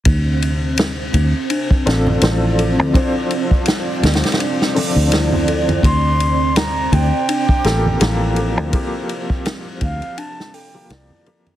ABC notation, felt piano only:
X:1
M:4/4
L:1/16
Q:"Swing 16ths" 1/4=83
K:Dm
V:1 name="Felt piano"
z8 z2 [CDFA]2 [F,CDA]4 | [F,CDc]8- [F,CDc]2 [F,CDd]6 | z8 z2 [B,FGA]2 [F,B,GA]4 | [F,B,G]8- [F,B,G]2 z [F,B,G]3 [F,B,G]2 |]